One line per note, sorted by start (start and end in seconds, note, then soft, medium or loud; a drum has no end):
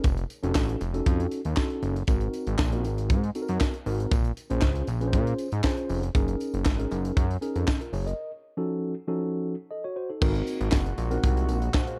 0.04 0.25 F1 loud
0.04 kick loud
0.04 closed hi-hat medium
0.04 tambourine medium
0.17 closed hi-hat soft
0.30 closed hi-hat medium
0.30 tambourine soft
0.43 0.53 F1 loud
0.43 0.79 C#4 medium
0.43 0.80 D#4 medium
0.43 0.80 F#4 medium
0.43 0.80 A4 medium
0.43 closed hi-hat medium
0.55 0.76 A1 loud
0.55 kick loud
0.55 snare loud
0.55 clap loud
0.55 tambourine medium
0.69 closed hi-hat medium
0.81 1.01 F1 medium
0.81 closed hi-hat medium
0.81 tambourine soft
0.94 1.40 C#4 medium
0.94 1.40 D#4 medium
0.94 1.40 F#4 medium
0.94 1.40 A4 medium
0.94 closed hi-hat medium
1.06 1.27 F2 loud
1.06 kick loud
1.06 closed hi-hat medium
1.20 closed hi-hat medium
1.31 closed hi-hat medium
1.31 tambourine soft
1.45 1.55 D#2 medium
1.45 closed hi-hat medium
1.57 1.95 C#4 medium
1.57 1.95 D#4 medium
1.57 1.95 F#4 medium
1.57 1.95 A4 medium
1.57 kick loud
1.57 snare loud
1.57 clap loud
1.57 tambourine medium
1.70 closed hi-hat soft
1.83 2.03 F#1 loud
1.83 closed hi-hat medium
1.83 tambourine soft
1.96 closed hi-hat medium
2.07 2.28 G#1 loud
2.07 2.54 C4 medium
2.07 2.54 D#4 medium
2.07 2.55 F#4 medium
2.07 2.55 A#4 medium
2.07 kick loud
2.07 closed hi-hat medium
2.07 tambourine medium
2.21 closed hi-hat soft
2.33 closed hi-hat medium
2.33 tambourine soft
2.47 2.57 G#1 loud
2.47 closed hi-hat medium
2.59 2.86 A#1 loud
2.59 kick loud
2.59 snare loud
2.59 clap medium
2.59 tambourine medium
2.72 2.78 A#3 medium
2.72 3.18 D#4 medium
2.72 3.18 F#4 medium
2.72 3.19 A#4 medium
2.72 closed hi-hat medium
2.78 3.21 C4 medium
2.84 3.12 G#1 medium
2.84 closed hi-hat medium
2.84 tambourine medium
2.98 closed hi-hat medium
3.10 3.30 G#2 loud
3.10 kick loud
3.10 closed hi-hat medium
3.10 tambourine soft
3.24 closed hi-hat soft
3.35 3.73 C4 medium
3.35 3.73 D#4 medium
3.35 3.73 F#4 medium
3.35 3.42 A4 medium
3.35 closed hi-hat medium
3.35 tambourine soft
3.42 3.76 A#4 medium
3.48 3.59 F#2 medium
3.48 closed hi-hat medium
3.60 kick loud
3.60 snare loud
3.60 clap loud
3.60 tambourine medium
3.74 closed hi-hat soft
3.86 4.07 G#1 medium
3.86 4.11 C4 medium
3.86 4.12 D#4 medium
3.86 4.12 F#4 medium
3.86 4.12 A#4 medium
3.86 open hi-hat medium
3.86 tambourine soft
4.00 closed hi-hat medium
4.11 4.32 A#1 loud
4.11 kick loud
4.11 closed hi-hat medium
4.11 tambourine medium
4.25 closed hi-hat soft
4.37 closed hi-hat medium
4.37 tambourine soft
4.50 4.60 A#1 loud
4.50 4.86 C#4 medium
4.50 4.86 F4 medium
4.50 4.87 G#4 medium
4.50 4.87 C5 medium
4.50 closed hi-hat soft
4.62 4.83 C#2 loud
4.62 kick loud
4.62 snare loud
4.62 clap medium
4.62 tambourine medium
4.75 closed hi-hat medium
4.87 5.15 A#1 medium
4.87 closed hi-hat medium
4.87 tambourine soft
5.01 5.47 C#4 medium
5.01 5.47 F4 medium
5.01 5.47 G#4 medium
5.01 5.07 B4 medium
5.01 closed hi-hat medium
5.08 5.50 C5 medium
5.12 5.34 A#2 loud
5.12 kick loud
5.12 closed hi-hat medium
5.12 tambourine soft
5.27 closed hi-hat soft
5.39 closed hi-hat medium
5.39 tambourine soft
5.52 5.62 G#2 medium
5.52 closed hi-hat medium
5.63 6.01 C#4 medium
5.63 6.02 F4 medium
5.63 6.01 G#4 medium
5.63 6.02 C5 loud
5.63 kick loud
5.63 snare loud
5.63 clap loud
5.63 tambourine medium
5.77 closed hi-hat soft
5.89 6.10 F1 medium
5.89 open hi-hat medium
5.89 tambourine soft
6.03 closed hi-hat medium
6.15 6.35 F#1 loud
6.15 6.61 C#4 medium
6.15 6.61 D#4 medium
6.15 6.61 G#4 medium
6.15 6.62 A#4 medium
6.15 kick loud
6.15 closed hi-hat medium
6.15 tambourine medium
6.28 closed hi-hat soft
6.40 closed hi-hat medium
6.40 tambourine soft
6.54 6.67 F#1 loud
6.54 closed hi-hat medium
6.65 6.86 G#1 loud
6.65 kick loud
6.65 snare loud
6.65 clap loud
6.65 tambourine medium
6.78 7.24 C#4 medium
6.78 7.25 D#4 medium
6.78 7.25 G#4 medium
6.78 7.25 A#4 medium
6.78 closed hi-hat medium
6.91 7.12 F#1 loud
6.91 closed hi-hat medium
6.91 tambourine soft
7.05 closed hi-hat medium
7.17 7.37 F#2 loud
7.17 kick loud
7.17 closed hi-hat medium
7.31 closed hi-hat soft
7.41 7.79 C#4 medium
7.41 7.79 D#4 medium
7.41 7.67 G#4 medium
7.41 7.67 A#4 medium
7.41 closed hi-hat medium
7.41 tambourine soft
7.56 7.65 F2 medium
7.56 closed hi-hat medium
7.68 kick loud
7.68 snare loud
7.68 clap loud
7.68 tambourine medium
7.81 7.92 F4 medium
7.81 7.92 A#4 medium
7.81 closed hi-hat soft
7.93 8.13 F#1 medium
7.93 8.06 G#4 medium
7.93 8.06 C#5 medium
7.93 open hi-hat medium
7.93 tambourine soft
8.06 8.31 A#4 medium
8.06 8.30 D#5 medium
8.06 closed hi-hat medium
8.57 8.93 F3 medium
8.57 8.93 C#4 medium
8.57 8.93 D#4 medium
8.57 8.94 F#4 medium
8.57 8.94 A4 medium
9.08 9.54 F3 medium
9.08 9.54 C#4 medium
9.08 9.54 D#4 medium
9.08 9.54 F#4 medium
9.08 9.54 A4 loud
9.71 9.84 A4 soft
9.71 9.84 D#5 medium
9.84 9.95 F#4 medium
9.84 9.96 C#5 medium
9.96 10.09 F#4 medium
9.96 10.09 C5 medium
10.09 10.20 D#4 soft
10.09 10.34 A4 medium
10.21 10.42 G#1 loud
10.21 11.99 A#2 medium
10.21 11.99 G#3 medium
10.21 11.99 A#3 medium
10.21 10.87 C4 medium
10.21 10.87 D#4 medium
10.21 10.87 F#4 medium
10.21 11.99 F#4 medium
10.21 10.87 A#4 loud
10.21 kick loud
10.21 crash loud
10.21 tambourine medium
10.35 closed hi-hat soft
10.47 closed hi-hat medium
10.47 tambourine soft
10.61 10.70 G#1 medium
10.61 closed hi-hat soft
10.72 10.93 F#1 loud
10.72 kick loud
10.72 snare loud
10.72 clap loud
10.72 tambourine loud
10.86 closed hi-hat medium
10.98 11.18 A#1 loud
10.98 closed hi-hat medium
10.98 tambourine medium
11.10 11.57 C4 loud
11.10 11.57 D#4 medium
11.10 11.57 F#4 medium
11.10 11.57 A#4 loud
11.10 closed hi-hat medium
11.23 11.51 C2 loud
11.23 kick loud
11.23 closed hi-hat medium
11.23 tambourine soft
11.37 closed hi-hat medium
11.49 11.70 A#1 loud
11.49 closed hi-hat medium
11.49 tambourine soft
11.62 closed hi-hat medium
11.74 11.87 C5 medium
11.74 11.87 F#5 medium
11.74 kick loud
11.74 snare loud
11.74 clap loud
11.74 tambourine medium
11.87 11.99 C5 medium
11.87 11.99 F5 medium
11.87 closed hi-hat soft